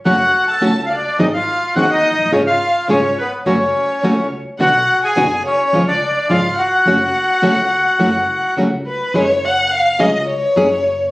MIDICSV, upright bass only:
0, 0, Header, 1, 2, 480
1, 0, Start_track
1, 0, Key_signature, 3, "minor"
1, 0, Tempo, 568182
1, 54, Time_signature, 4, 2, 24, 8
1, 9386, End_track
2, 0, Start_track
2, 0, Title_t, "Upright bass"
2, 0, Program_c, 0, 32
2, 46, Note_on_c, 0, 30, 70
2, 252, Note_off_c, 0, 30, 0
2, 536, Note_on_c, 0, 37, 70
2, 738, Note_off_c, 0, 37, 0
2, 1014, Note_on_c, 0, 32, 78
2, 1217, Note_off_c, 0, 32, 0
2, 1489, Note_on_c, 0, 39, 78
2, 1692, Note_off_c, 0, 39, 0
2, 1783, Note_on_c, 0, 29, 42
2, 1844, Note_off_c, 0, 29, 0
2, 1849, Note_on_c, 0, 30, 50
2, 1898, Note_off_c, 0, 30, 0
2, 1903, Note_on_c, 0, 31, 65
2, 1958, Note_off_c, 0, 31, 0
2, 1963, Note_on_c, 0, 32, 78
2, 2168, Note_off_c, 0, 32, 0
2, 2453, Note_on_c, 0, 32, 81
2, 2651, Note_off_c, 0, 32, 0
2, 2923, Note_on_c, 0, 30, 79
2, 3124, Note_off_c, 0, 30, 0
2, 3407, Note_on_c, 0, 37, 75
2, 3606, Note_off_c, 0, 37, 0
2, 3883, Note_on_c, 0, 35, 78
2, 4083, Note_off_c, 0, 35, 0
2, 4369, Note_on_c, 0, 30, 79
2, 4564, Note_off_c, 0, 30, 0
2, 4841, Note_on_c, 0, 37, 82
2, 5040, Note_off_c, 0, 37, 0
2, 5321, Note_on_c, 0, 32, 69
2, 5520, Note_off_c, 0, 32, 0
2, 5791, Note_on_c, 0, 30, 75
2, 5995, Note_off_c, 0, 30, 0
2, 6271, Note_on_c, 0, 37, 72
2, 6477, Note_off_c, 0, 37, 0
2, 6762, Note_on_c, 0, 30, 76
2, 6965, Note_off_c, 0, 30, 0
2, 7242, Note_on_c, 0, 37, 75
2, 7450, Note_off_c, 0, 37, 0
2, 7722, Note_on_c, 0, 30, 79
2, 8412, Note_off_c, 0, 30, 0
2, 8446, Note_on_c, 0, 37, 91
2, 8652, Note_off_c, 0, 37, 0
2, 8928, Note_on_c, 0, 30, 90
2, 9386, Note_off_c, 0, 30, 0
2, 9386, End_track
0, 0, End_of_file